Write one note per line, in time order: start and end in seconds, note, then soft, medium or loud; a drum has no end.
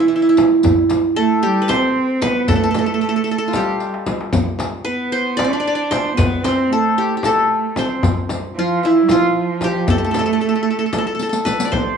0.00 0.44 E3 medium
0.00 0.08 E4 medium
0.08 0.15 E4 soft
0.08 darbuka ka soft
0.16 0.22 E4 medium
0.22 0.29 E4 medium
0.29 1.68 E4 medium
0.37 riq medium
0.37 darbuka tek medium
0.37 frame drum medium
0.63 riq medium
0.63 darbuka dum medium
0.63 frame drum medium
0.89 riq soft
0.89 darbuka tek medium
0.89 frame drum medium
1.16 1.45 A3 medium
1.16 2.33 A4 medium
1.16 darbuka ka soft
1.42 1.71 G3 medium
1.42 2.68 G4 medium
1.42 riq soft
1.62 1.75 B4 medium
1.68 2.24 C4 medium
1.68 2.28 C5 loud
1.68 riq soft
1.68 darbuka tek medium
1.68 frame drum medium
1.96 darbuka ka soft
2.21 2.49 B3 medium
2.21 3.31 B4 loud
2.21 riq soft
2.21 darbuka tek medium
2.21 frame drum medium
2.48 3.55 A3 medium
2.48 2.55 A4 medium
2.48 riq medium
2.48 darbuka dum medium
2.48 frame drum medium
2.56 2.63 A4 medium
2.64 2.70 A4 medium
2.71 2.78 A4 medium
2.71 riq soft
2.71 darbuka tek medium
2.75 2.86 A4 medium
2.75 frame drum medium
2.86 2.94 A4 medium
2.94 3.01 A4 medium
3.01 3.08 A4 soft
3.01 riq soft
3.01 darbuka ka soft
3.09 3.16 A4 medium
3.16 3.24 A4 medium
3.24 3.31 A4 medium
3.24 riq soft
3.24 darbuka ka soft
3.31 3.38 A4 medium
3.38 4.55 A4 medium
3.48 4.83 F4 soft
3.53 4.13 G3 medium
3.53 4.81 G4 medium
3.53 riq medium
3.53 darbuka tek medium
3.53 frame drum medium
3.80 riq soft
3.80 darbuka tek medium
3.94 darbuka ka medium
4.06 riq soft
4.06 darbuka tek medium
4.06 frame drum medium
4.21 darbuka ka medium
4.33 riq medium
4.33 frame drum medium
4.33 darbuka dum medium
4.59 riq medium
4.59 darbuka tek medium
4.59 frame drum medium
4.85 5.40 B3 medium
4.85 5.18 B4 medium
4.85 darbuka ka soft
5.12 5.90 C5 medium
5.12 riq soft
5.37 6.16 D4 medium
5.37 5.44 D5 loud
5.37 riq soft
5.37 darbuka tek medium
5.37 frame drum medium
5.44 5.53 D5 medium
5.53 5.59 D5 medium
5.60 5.67 D5 medium
5.66 5.75 D5 medium
5.66 darbuka ka soft
5.75 6.74 D5 medium
5.91 6.23 C5 medium
5.91 riq medium
5.91 darbuka tek medium
5.91 frame drum medium
6.17 6.45 B3 medium
6.17 6.50 B4 medium
6.17 riq medium
6.17 darbuka dum medium
6.17 frame drum medium
6.43 6.71 C4 medium
6.43 7.50 C5 medium
6.43 riq soft
6.43 darbuka tek medium
6.43 frame drum medium
6.70 7.22 A3 medium
6.70 7.25 A4 medium
6.70 darbuka ka soft
6.98 7.17 G4 medium
6.98 riq soft
7.17 8.43 G4 soft
7.23 7.77 A3 medium
7.23 8.42 A4 medium
7.23 riq medium
7.23 darbuka tek medium
7.23 frame drum medium
7.50 darbuka ka soft
7.76 8.03 C4 medium
7.76 8.84 C5 medium
7.76 riq soft
7.76 darbuka tek medium
7.76 frame drum medium
8.03 riq medium
8.03 frame drum medium
8.03 darbuka dum loud
8.29 riq soft
8.29 darbuka tek medium
8.29 frame drum medium
8.55 8.84 F3 medium
8.55 8.91 F4 medium
8.55 darbuka ka soft
8.82 9.03 E3 medium
8.82 9.17 E4 medium
8.82 riq soft
9.02 9.10 G3 medium
9.09 9.89 F3 medium
9.09 10.46 F4 medium
9.09 riq medium
9.09 darbuka tek medium
9.09 frame drum medium
9.36 darbuka ka soft
9.61 10.90 G4 medium
9.61 riq soft
9.61 darbuka tek medium
9.61 frame drum medium
9.87 11.46 A3 medium
9.87 9.98 A4 medium
9.87 riq medium
9.87 frame drum medium
9.87 darbuka dum medium
9.98 10.04 A4 medium
10.05 10.11 A4 medium
10.11 10.18 A4 medium
10.11 riq medium
10.11 darbuka tek medium
10.11 frame drum medium
10.19 10.25 A4 medium
10.26 10.32 A4 medium
10.33 10.41 A4 medium
10.41 10.48 A4 medium
10.41 riq soft
10.49 10.55 A4 medium
10.55 10.62 A4 medium
10.63 10.70 A4 medium
10.70 10.78 A4 soft
10.79 10.86 A4 medium
10.86 10.92 A4 soft
10.93 10.98 A4 medium
10.93 riq medium
10.93 darbuka tek medium
10.93 frame drum medium
10.98 11.06 A4 medium
11.07 11.14 A4 medium
11.15 11.22 A4 medium
11.19 11.29 A4 medium
11.19 riq medium
11.29 11.97 A4 medium
11.29 riq medium
11.45 11.78 B4 medium
11.45 riq medium
11.45 frame drum medium
11.60 riq medium
11.65 11.97 D5 medium
11.72 11.97 C5 medium
11.72 frame drum medium